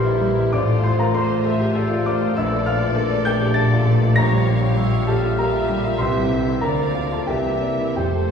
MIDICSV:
0, 0, Header, 1, 11, 480
1, 0, Start_track
1, 0, Key_signature, -1, "major"
1, 0, Tempo, 607903
1, 416, Time_signature, 3, 2, 24, 8
1, 4732, Tempo, 638978
1, 5692, Tempo, 694444
1, 6410, End_track
2, 0, Start_track
2, 0, Title_t, "Viola section"
2, 0, Program_c, 0, 48
2, 0, Note_on_c, 0, 69, 51
2, 168, Note_off_c, 0, 69, 0
2, 171, Note_on_c, 0, 67, 45
2, 412, Note_on_c, 0, 69, 52
2, 414, Note_off_c, 0, 67, 0
2, 896, Note_off_c, 0, 69, 0
2, 897, Note_on_c, 0, 72, 57
2, 1131, Note_off_c, 0, 72, 0
2, 1134, Note_on_c, 0, 76, 53
2, 1369, Note_off_c, 0, 76, 0
2, 1380, Note_on_c, 0, 74, 50
2, 1619, Note_off_c, 0, 74, 0
2, 1623, Note_on_c, 0, 72, 54
2, 1860, Note_off_c, 0, 72, 0
2, 1867, Note_on_c, 0, 74, 65
2, 3289, Note_off_c, 0, 74, 0
2, 3293, Note_on_c, 0, 73, 55
2, 3759, Note_off_c, 0, 73, 0
2, 3776, Note_on_c, 0, 73, 57
2, 4005, Note_off_c, 0, 73, 0
2, 4015, Note_on_c, 0, 76, 57
2, 5204, Note_off_c, 0, 76, 0
2, 5213, Note_on_c, 0, 74, 45
2, 5695, Note_on_c, 0, 76, 46
2, 5697, Note_off_c, 0, 74, 0
2, 6166, Note_off_c, 0, 76, 0
2, 6178, Note_on_c, 0, 72, 36
2, 6410, Note_off_c, 0, 72, 0
2, 6410, End_track
3, 0, Start_track
3, 0, Title_t, "Cor anglais"
3, 0, Program_c, 1, 69
3, 0, Note_on_c, 1, 70, 49
3, 414, Note_on_c, 1, 72, 49
3, 426, Note_off_c, 1, 70, 0
3, 891, Note_on_c, 1, 74, 50
3, 903, Note_off_c, 1, 72, 0
3, 1139, Note_on_c, 1, 72, 47
3, 1151, Note_off_c, 1, 74, 0
3, 1371, Note_on_c, 1, 69, 51
3, 1383, Note_off_c, 1, 72, 0
3, 1623, Note_on_c, 1, 70, 53
3, 1635, Note_off_c, 1, 69, 0
3, 1849, Note_off_c, 1, 70, 0
3, 1854, Note_on_c, 1, 69, 47
3, 2156, Note_off_c, 1, 69, 0
3, 2329, Note_on_c, 1, 74, 50
3, 3254, Note_off_c, 1, 74, 0
3, 3289, Note_on_c, 1, 73, 44
3, 3768, Note_on_c, 1, 76, 50
3, 3780, Note_off_c, 1, 73, 0
3, 4019, Note_on_c, 1, 77, 48
3, 4031, Note_off_c, 1, 76, 0
3, 4268, Note_on_c, 1, 70, 45
3, 4279, Note_off_c, 1, 77, 0
3, 4741, Note_off_c, 1, 70, 0
3, 4747, Note_on_c, 1, 72, 46
3, 5177, Note_off_c, 1, 72, 0
3, 5215, Note_on_c, 1, 74, 40
3, 5689, Note_off_c, 1, 74, 0
3, 5702, Note_on_c, 1, 74, 38
3, 6161, Note_off_c, 1, 74, 0
3, 6171, Note_on_c, 1, 72, 34
3, 6410, Note_off_c, 1, 72, 0
3, 6410, End_track
4, 0, Start_track
4, 0, Title_t, "Violin section"
4, 0, Program_c, 2, 48
4, 0, Note_on_c, 2, 64, 51
4, 0, Note_on_c, 2, 72, 44
4, 405, Note_off_c, 2, 72, 0
4, 408, Note_off_c, 2, 64, 0
4, 426, Note_on_c, 2, 65, 52
4, 429, Note_on_c, 2, 72, 51
4, 886, Note_off_c, 2, 65, 0
4, 889, Note_off_c, 2, 72, 0
4, 895, Note_on_c, 2, 65, 52
4, 899, Note_on_c, 2, 72, 50
4, 1837, Note_off_c, 2, 65, 0
4, 1838, Note_off_c, 2, 72, 0
4, 1860, Note_on_c, 2, 69, 61
4, 1864, Note_on_c, 2, 74, 52
4, 2786, Note_off_c, 2, 69, 0
4, 2792, Note_off_c, 2, 74, 0
4, 2798, Note_on_c, 2, 69, 51
4, 2801, Note_on_c, 2, 74, 51
4, 3272, Note_off_c, 2, 69, 0
4, 3274, Note_off_c, 2, 74, 0
4, 3281, Note_on_c, 2, 67, 56
4, 3284, Note_on_c, 2, 77, 56
4, 4226, Note_off_c, 2, 77, 0
4, 4236, Note_off_c, 2, 67, 0
4, 4246, Note_on_c, 2, 67, 49
4, 4248, Note_on_c, 2, 77, 49
4, 4721, Note_off_c, 2, 67, 0
4, 4722, Note_off_c, 2, 77, 0
4, 4729, Note_on_c, 2, 76, 49
4, 4730, Note_on_c, 2, 67, 46
4, 5189, Note_off_c, 2, 67, 0
4, 5198, Note_off_c, 2, 76, 0
4, 5200, Note_on_c, 2, 70, 44
4, 5201, Note_on_c, 2, 77, 46
4, 5684, Note_off_c, 2, 70, 0
4, 5691, Note_off_c, 2, 77, 0
4, 5693, Note_on_c, 2, 70, 40
4, 5694, Note_on_c, 2, 76, 40
4, 6156, Note_off_c, 2, 70, 0
4, 6157, Note_off_c, 2, 76, 0
4, 6167, Note_on_c, 2, 72, 42
4, 6169, Note_on_c, 2, 69, 37
4, 6410, Note_off_c, 2, 69, 0
4, 6410, Note_off_c, 2, 72, 0
4, 6410, End_track
5, 0, Start_track
5, 0, Title_t, "Clarinet"
5, 0, Program_c, 3, 71
5, 0, Note_on_c, 3, 67, 46
5, 411, Note_off_c, 3, 67, 0
5, 416, Note_on_c, 3, 69, 51
5, 1148, Note_off_c, 3, 69, 0
5, 1383, Note_on_c, 3, 72, 49
5, 1829, Note_off_c, 3, 72, 0
5, 1859, Note_on_c, 3, 72, 51
5, 2335, Note_on_c, 3, 70, 53
5, 2347, Note_off_c, 3, 72, 0
5, 2570, Note_on_c, 3, 69, 50
5, 2582, Note_off_c, 3, 70, 0
5, 3287, Note_off_c, 3, 69, 0
5, 3295, Note_on_c, 3, 67, 47
5, 4232, Note_off_c, 3, 67, 0
5, 4256, Note_on_c, 3, 67, 48
5, 4726, Note_off_c, 3, 67, 0
5, 4741, Note_on_c, 3, 67, 47
5, 4980, Note_on_c, 3, 69, 41
5, 4991, Note_off_c, 3, 67, 0
5, 5208, Note_on_c, 3, 70, 44
5, 5219, Note_off_c, 3, 69, 0
5, 5694, Note_off_c, 3, 70, 0
5, 5697, Note_on_c, 3, 70, 40
5, 6174, Note_on_c, 3, 69, 40
5, 6184, Note_off_c, 3, 70, 0
5, 6410, Note_off_c, 3, 69, 0
5, 6410, End_track
6, 0, Start_track
6, 0, Title_t, "Grand piano"
6, 0, Program_c, 4, 0
6, 0, Control_c, 4, 64, 127
6, 0, Note_on_c, 4, 34, 59
6, 0, Note_on_c, 4, 55, 43
6, 0, Note_on_c, 4, 64, 44
6, 0, Note_on_c, 4, 65, 36
6, 0, Note_on_c, 4, 67, 43
6, 0, Note_on_c, 4, 70, 39
6, 0, Note_on_c, 4, 72, 47
6, 0, Note_on_c, 4, 74, 46
6, 0, Note_on_c, 4, 82, 53
6, 0, Note_on_c, 4, 84, 65
6, 0, Note_on_c, 4, 86, 55
6, 44, Note_off_c, 4, 64, 0
6, 44, Note_on_c, 4, 64, 43
6, 120, Note_off_c, 4, 67, 0
6, 167, Note_off_c, 4, 55, 0
6, 167, Note_on_c, 4, 55, 44
6, 242, Note_off_c, 4, 64, 0
6, 295, Note_on_c, 4, 64, 43
6, 364, Note_off_c, 4, 55, 0
6, 381, Note_off_c, 4, 34, 0
6, 383, Note_off_c, 4, 84, 0
6, 387, Note_off_c, 4, 72, 0
6, 415, Note_off_c, 4, 86, 0
6, 415, Note_on_c, 4, 86, 67
6, 416, Note_off_c, 4, 64, 0
6, 416, Note_on_c, 4, 33, 58
6, 422, Note_off_c, 4, 74, 0
6, 422, Note_on_c, 4, 74, 55
6, 430, Control_c, 4, 64, 0
6, 434, Note_off_c, 4, 70, 0
6, 435, Note_off_c, 4, 65, 0
6, 437, Note_off_c, 4, 82, 0
6, 534, Note_on_c, 4, 57, 43
6, 570, Control_c, 4, 64, 127
6, 640, Note_off_c, 4, 86, 0
6, 644, Note_off_c, 4, 74, 0
6, 658, Note_on_c, 4, 72, 47
6, 660, Note_on_c, 4, 84, 57
6, 729, Note_off_c, 4, 57, 0
6, 771, Note_off_c, 4, 84, 0
6, 780, Note_on_c, 4, 65, 44
6, 785, Note_on_c, 4, 82, 59
6, 799, Note_on_c, 4, 70, 48
6, 850, Note_off_c, 4, 72, 0
6, 893, Note_off_c, 4, 82, 0
6, 894, Note_on_c, 4, 57, 43
6, 901, Note_off_c, 4, 70, 0
6, 904, Note_on_c, 4, 84, 73
6, 919, Note_on_c, 4, 72, 51
6, 970, Note_off_c, 4, 65, 0
6, 1008, Note_off_c, 4, 72, 0
6, 1020, Note_on_c, 4, 72, 41
6, 1086, Note_off_c, 4, 57, 0
6, 1143, Note_on_c, 4, 69, 45
6, 1209, Note_off_c, 4, 72, 0
6, 1264, Note_on_c, 4, 67, 38
6, 1331, Note_off_c, 4, 69, 0
6, 1380, Note_off_c, 4, 67, 0
6, 1383, Note_on_c, 4, 69, 48
6, 1497, Note_on_c, 4, 65, 44
6, 1572, Note_off_c, 4, 69, 0
6, 1588, Note_off_c, 4, 84, 0
6, 1617, Note_on_c, 4, 57, 46
6, 1628, Note_on_c, 4, 86, 66
6, 1636, Note_on_c, 4, 74, 49
6, 1690, Note_off_c, 4, 65, 0
6, 1745, Note_on_c, 4, 65, 48
6, 1810, Note_off_c, 4, 57, 0
6, 1825, Note_off_c, 4, 33, 0
6, 1846, Note_off_c, 4, 86, 0
6, 1851, Note_off_c, 4, 74, 0
6, 1861, Note_off_c, 4, 65, 0
6, 1867, Note_on_c, 4, 88, 65
6, 1872, Control_c, 4, 64, 0
6, 1873, Note_on_c, 4, 34, 63
6, 1874, Note_on_c, 4, 76, 44
6, 1981, Control_c, 4, 64, 127
6, 1989, Note_on_c, 4, 57, 44
6, 2082, Note_off_c, 4, 88, 0
6, 2085, Note_off_c, 4, 76, 0
6, 2103, Note_on_c, 4, 89, 64
6, 2109, Note_on_c, 4, 74, 47
6, 2110, Note_on_c, 4, 77, 51
6, 2170, Note_off_c, 4, 57, 0
6, 2222, Note_on_c, 4, 65, 46
6, 2288, Note_off_c, 4, 74, 0
6, 2342, Note_on_c, 4, 57, 46
6, 2404, Note_off_c, 4, 65, 0
6, 2454, Note_on_c, 4, 74, 41
6, 2524, Note_off_c, 4, 57, 0
6, 2538, Note_off_c, 4, 89, 0
6, 2542, Note_off_c, 4, 77, 0
6, 2567, Note_on_c, 4, 91, 65
6, 2570, Note_on_c, 4, 69, 47
6, 2576, Note_on_c, 4, 79, 50
6, 2640, Note_off_c, 4, 74, 0
6, 2696, Note_on_c, 4, 67, 40
6, 2758, Note_off_c, 4, 69, 0
6, 2788, Note_off_c, 4, 91, 0
6, 2793, Note_off_c, 4, 79, 0
6, 2796, Note_on_c, 4, 93, 77
6, 2809, Note_off_c, 4, 67, 0
6, 2809, Note_on_c, 4, 81, 52
6, 2815, Note_on_c, 4, 69, 46
6, 2939, Note_on_c, 4, 65, 46
6, 3001, Note_off_c, 4, 69, 0
6, 3051, Note_on_c, 4, 57, 46
6, 3123, Note_off_c, 4, 65, 0
6, 3184, Note_on_c, 4, 65, 43
6, 3240, Note_off_c, 4, 57, 0
6, 3249, Note_off_c, 4, 93, 0
6, 3256, Note_off_c, 4, 81, 0
6, 3261, Note_off_c, 4, 34, 0
6, 3282, Note_on_c, 4, 94, 77
6, 3294, Note_off_c, 4, 65, 0
6, 3296, Note_on_c, 4, 34, 58
6, 3298, Note_on_c, 4, 82, 57
6, 3299, Control_c, 4, 64, 0
6, 3414, Note_on_c, 4, 55, 43
6, 3438, Control_c, 4, 64, 127
6, 3532, Note_on_c, 4, 73, 46
6, 3601, Note_off_c, 4, 55, 0
6, 3652, Note_on_c, 4, 65, 44
6, 3720, Note_off_c, 4, 73, 0
6, 3767, Note_on_c, 4, 55, 46
6, 3839, Note_off_c, 4, 65, 0
6, 3891, Note_on_c, 4, 73, 41
6, 3957, Note_off_c, 4, 55, 0
6, 3971, Note_off_c, 4, 94, 0
6, 3979, Note_off_c, 4, 82, 0
6, 4002, Note_on_c, 4, 81, 57
6, 4009, Note_on_c, 4, 67, 43
6, 4017, Note_on_c, 4, 69, 48
6, 4080, Note_off_c, 4, 73, 0
6, 4140, Note_on_c, 4, 65, 37
6, 4199, Note_off_c, 4, 67, 0
6, 4227, Note_off_c, 4, 81, 0
6, 4235, Note_off_c, 4, 69, 0
6, 4249, Note_on_c, 4, 67, 42
6, 4253, Note_off_c, 4, 65, 0
6, 4253, Note_on_c, 4, 82, 54
6, 4262, Note_on_c, 4, 70, 41
6, 4371, Note_on_c, 4, 65, 41
6, 4440, Note_off_c, 4, 67, 0
6, 4497, Note_on_c, 4, 55, 45
6, 4562, Note_off_c, 4, 65, 0
6, 4618, Note_on_c, 4, 65, 41
6, 4686, Note_off_c, 4, 55, 0
6, 4702, Note_off_c, 4, 82, 0
6, 4704, Note_off_c, 4, 34, 0
6, 4707, Note_off_c, 4, 70, 0
6, 4725, Note_on_c, 4, 84, 62
6, 4735, Note_off_c, 4, 65, 0
6, 4740, Note_on_c, 4, 72, 47
6, 4743, Note_on_c, 4, 36, 56
6, 4745, Control_c, 4, 64, 0
6, 4861, Note_on_c, 4, 55, 40
6, 4881, Control_c, 4, 64, 127
6, 4963, Note_off_c, 4, 72, 0
6, 4974, Note_on_c, 4, 72, 39
6, 5040, Note_off_c, 4, 55, 0
6, 5085, Note_on_c, 4, 64, 40
6, 5157, Note_off_c, 4, 72, 0
6, 5166, Note_off_c, 4, 84, 0
6, 5191, Note_off_c, 4, 36, 0
6, 5199, Note_on_c, 4, 82, 56
6, 5201, Note_off_c, 4, 64, 0
6, 5204, Note_on_c, 4, 38, 46
6, 5204, Note_on_c, 4, 70, 44
6, 5211, Control_c, 4, 64, 0
6, 5326, Control_c, 4, 64, 127
6, 5329, Note_on_c, 4, 58, 32
6, 5451, Note_on_c, 4, 77, 37
6, 5520, Note_off_c, 4, 58, 0
6, 5540, Note_off_c, 4, 82, 0
6, 5543, Note_off_c, 4, 70, 0
6, 5573, Note_on_c, 4, 65, 34
6, 5580, Note_on_c, 4, 81, 41
6, 5593, Note_on_c, 4, 69, 34
6, 5645, Note_off_c, 4, 77, 0
6, 5678, Note_off_c, 4, 38, 0
6, 5689, Note_off_c, 4, 81, 0
6, 5690, Note_on_c, 4, 79, 50
6, 5694, Note_off_c, 4, 65, 0
6, 5696, Note_off_c, 4, 69, 0
6, 5697, Note_on_c, 4, 36, 38
6, 5699, Note_on_c, 4, 67, 41
6, 5703, Control_c, 4, 64, 0
6, 5817, Note_on_c, 4, 58, 34
6, 5830, Control_c, 4, 64, 127
6, 5930, Note_on_c, 4, 74, 37
6, 5999, Note_off_c, 4, 58, 0
6, 6056, Note_on_c, 4, 64, 32
6, 6118, Note_off_c, 4, 74, 0
6, 6136, Note_off_c, 4, 79, 0
6, 6141, Note_off_c, 4, 67, 0
6, 6153, Note_off_c, 4, 36, 0
6, 6170, Note_on_c, 4, 79, 53
6, 6171, Note_off_c, 4, 64, 0
6, 6173, Note_on_c, 4, 41, 43
6, 6177, Note_on_c, 4, 67, 38
6, 6180, Control_c, 4, 64, 0
6, 6300, Note_on_c, 4, 57, 33
6, 6312, Control_c, 4, 64, 127
6, 6410, Note_off_c, 4, 41, 0
6, 6410, Note_off_c, 4, 57, 0
6, 6410, Note_off_c, 4, 67, 0
6, 6410, Note_off_c, 4, 79, 0
6, 6410, End_track
7, 0, Start_track
7, 0, Title_t, "French horn section"
7, 0, Program_c, 5, 60
7, 0, Note_on_c, 5, 55, 50
7, 0, Note_on_c, 5, 64, 47
7, 406, Note_off_c, 5, 55, 0
7, 408, Note_off_c, 5, 64, 0
7, 413, Note_on_c, 5, 57, 49
7, 414, Note_on_c, 5, 65, 49
7, 772, Note_off_c, 5, 57, 0
7, 772, Note_off_c, 5, 65, 0
7, 906, Note_on_c, 5, 57, 55
7, 906, Note_on_c, 5, 65, 50
7, 1842, Note_off_c, 5, 57, 0
7, 1842, Note_off_c, 5, 65, 0
7, 1868, Note_on_c, 5, 62, 66
7, 1869, Note_on_c, 5, 57, 62
7, 3258, Note_off_c, 5, 62, 0
7, 3259, Note_off_c, 5, 57, 0
7, 3292, Note_on_c, 5, 65, 57
7, 3294, Note_on_c, 5, 55, 61
7, 4702, Note_off_c, 5, 65, 0
7, 4737, Note_on_c, 5, 64, 48
7, 5172, Note_off_c, 5, 64, 0
7, 5173, Note_off_c, 5, 55, 0
7, 5208, Note_on_c, 5, 65, 40
7, 5212, Note_on_c, 5, 58, 48
7, 5559, Note_off_c, 5, 65, 0
7, 5687, Note_on_c, 5, 64, 44
7, 6135, Note_off_c, 5, 64, 0
7, 6143, Note_off_c, 5, 58, 0
7, 6172, Note_on_c, 5, 65, 47
7, 6173, Note_on_c, 5, 57, 43
7, 6410, Note_off_c, 5, 57, 0
7, 6410, Note_off_c, 5, 65, 0
7, 6410, End_track
8, 0, Start_track
8, 0, Title_t, "Bassoon"
8, 0, Program_c, 6, 70
8, 0, Note_on_c, 6, 52, 50
8, 415, Note_on_c, 6, 53, 54
8, 427, Note_off_c, 6, 52, 0
8, 888, Note_off_c, 6, 53, 0
8, 893, Note_on_c, 6, 53, 49
8, 1627, Note_off_c, 6, 53, 0
8, 1863, Note_on_c, 6, 52, 56
8, 2775, Note_off_c, 6, 52, 0
8, 2813, Note_on_c, 6, 50, 49
8, 3064, Note_on_c, 6, 52, 53
8, 3076, Note_off_c, 6, 50, 0
8, 3302, Note_on_c, 6, 53, 61
8, 3314, Note_off_c, 6, 52, 0
8, 3532, Note_on_c, 6, 55, 51
8, 3544, Note_off_c, 6, 53, 0
8, 4249, Note_off_c, 6, 55, 0
8, 4253, Note_on_c, 6, 55, 44
8, 4724, Note_off_c, 6, 55, 0
8, 4738, Note_on_c, 6, 52, 54
8, 5172, Note_off_c, 6, 52, 0
8, 5207, Note_on_c, 6, 53, 41
8, 5707, Note_on_c, 6, 52, 41
8, 5717, Note_off_c, 6, 53, 0
8, 6171, Note_on_c, 6, 53, 42
8, 6182, Note_off_c, 6, 52, 0
8, 6410, Note_off_c, 6, 53, 0
8, 6410, End_track
9, 0, Start_track
9, 0, Title_t, "Cello section"
9, 0, Program_c, 7, 48
9, 0, Note_on_c, 7, 46, 55
9, 389, Note_off_c, 7, 46, 0
9, 419, Note_on_c, 7, 45, 54
9, 1830, Note_off_c, 7, 45, 0
9, 1861, Note_on_c, 7, 46, 57
9, 4732, Note_off_c, 7, 46, 0
9, 4738, Note_on_c, 7, 48, 51
9, 5193, Note_off_c, 7, 48, 0
9, 5214, Note_on_c, 7, 50, 43
9, 5688, Note_off_c, 7, 50, 0
9, 5700, Note_on_c, 7, 48, 37
9, 6160, Note_off_c, 7, 48, 0
9, 6174, Note_on_c, 7, 41, 39
9, 6410, Note_off_c, 7, 41, 0
9, 6410, End_track
10, 0, Start_track
10, 0, Title_t, "Timpani"
10, 0, Program_c, 8, 47
10, 6169, Note_on_c, 8, 41, 46
10, 6410, Note_off_c, 8, 41, 0
10, 6410, End_track
11, 0, Start_track
11, 0, Title_t, "Double bass section"
11, 0, Program_c, 10, 48
11, 0, Note_on_c, 10, 34, 50
11, 387, Note_off_c, 10, 34, 0
11, 418, Note_on_c, 10, 33, 47
11, 1829, Note_off_c, 10, 33, 0
11, 1866, Note_on_c, 10, 34, 54
11, 4732, Note_on_c, 10, 36, 48
11, 4734, Note_off_c, 10, 34, 0
11, 5190, Note_off_c, 10, 36, 0
11, 5206, Note_on_c, 10, 38, 42
11, 5684, Note_off_c, 10, 38, 0
11, 5695, Note_on_c, 10, 36, 41
11, 6157, Note_off_c, 10, 36, 0
11, 6170, Note_on_c, 10, 29, 38
11, 6410, Note_off_c, 10, 29, 0
11, 6410, End_track
0, 0, End_of_file